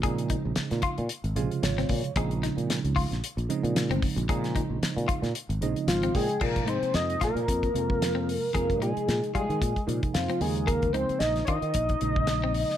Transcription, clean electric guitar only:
X:1
M:4/4
L:1/16
Q:"Swing 16ths" 1/4=113
K:Bbm
V:1 name="Clean electric guitar"
A2 E2 z2 F2 z4 z C2 z | A2 E2 z2 F2 z4 z C2 z | A2 E2 z2 F2 z4 z C2 z | A2 E2 z2 F2 z4 z C2 z |
A2 E2 z2 F2 z4 z C2 z | A2 E2 z2 F2 z4 z C2 z |]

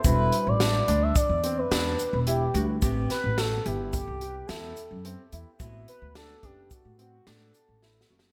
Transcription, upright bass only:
X:1
M:5/4
L:1/16
Q:1/4=108
K:Ador
V:1 name="Upright bass" clef=bass
E,,,2 z A,,,3 D,,2 z E,,3 E,,2 z E,,,3 D,,2 | A,,,2 z A,,,3 G,,,3 C,,3 E,,2 z F,,2 z E,, z | A,,,2 z D,,3 F,,,2 z A,,3 A,,2 z A,,,3 F,,,2 |]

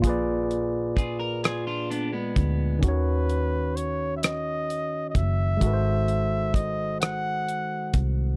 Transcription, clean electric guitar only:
X:1
M:6/8
L:1/16
Q:3/8=43
K:D#phr
V:1 name="Clean electric guitar"
z4 [^EG] A [EG] [=DE] [B,D] [G,B,]3 | z12 | z12 |]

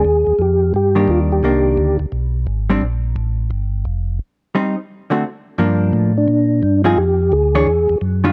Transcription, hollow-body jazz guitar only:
X:1
M:4/4
L:1/8
Q:"Swing" 1/4=173
K:Bb
V:1 name="Hollow-body jazz guitar"
z4 z [E,G,B,D]3 | [E,B,D]3 z4 [G,CD] | z8 | z2 [G,CE] z2 [D,A,C^F] z2 |
[K:Fmix] [F,B,D]3 z4 [F,CE_A] | z3 [=E,D_A^c] z3 [_E,G,DF] |]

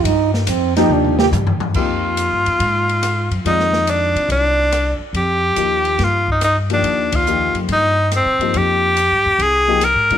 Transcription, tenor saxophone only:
X:1
M:4/4
L:1/8
Q:"Swing" 1/4=141
K:Fdor
V:1 name="Tenor saxophone"
z8 | F8 | E2 D2 D3 z | G4 F E E D- |
D F2 z E2 C2 | G4 A2 B2 |]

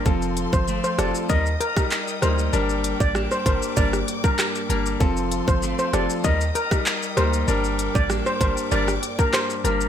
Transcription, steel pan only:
X:1
M:4/4
L:1/16
Q:1/4=97
K:Gm
V:1 name="Steel pan"
z3 c z c d z e z B z3 c z | z3 d z c c z d z2 B z4 | z3 c z c d z e z B z3 c z | z3 d z c c z d z2 B c z B z |]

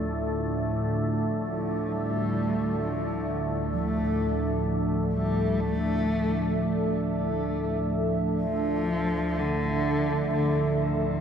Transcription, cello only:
X:1
M:4/4
L:1/16
Q:1/4=65
K:Dm
V:1 name="Cello" clef=bass
z6 F,2 G,4 F,3 z | A,4 z2 G,2 A,6 z2 | z4 F,4 D,4 D,3 z |]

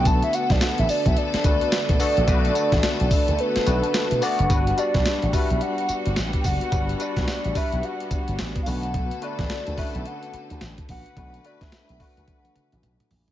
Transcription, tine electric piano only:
X:1
M:4/4
L:1/8
Q:"Swing 16ths" 1/4=108
K:Bm
V:1 name="Tine electric piano"
[A,B,DFB]2 z3 [A,B,DFB] z [A,B,DFA] | [A,B,DFB]3 z2 [A,B,DFB] z [A,B,DFd] | [G,DFB] [G,DFd] z [G,DFB]3 z2 | [G,DFB] [G,DFB] z [G,DFB]3 z [A,DFB]- |
[A,DFB] [A,DFB] z [A,CDFB]3 z2 | [A,DFB] [A,DFB] z [A,DFB]3 z2 |]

